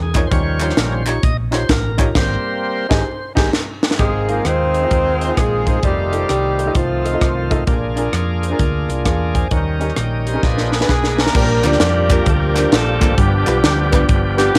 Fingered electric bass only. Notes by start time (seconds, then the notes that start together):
Already playing: E2
0.31 D#2
0.77 A#1
1.23 A#1
1.69 A1
2.15 G#1
2.91 G#1
3.37 G#1
3.99 G#1
4.45 D#2
4.91 D#2
5.37 A#1
5.83 F1
6.29 C2
6.75 C2
7.21 C2
7.67 A#1
8.13 F2
8.59 D2
8.88 C2
9.05 E2
9.51 D#2
9.97 A#1
10.43 A#1
10.89 B1
11.35 A#1
11.64 D2
11.81 F2
12.26 D2
12.72 A#1
13.01 G#1
13.18 G1
13.47 B1
13.63 D2
14.09 G1
14.55 A1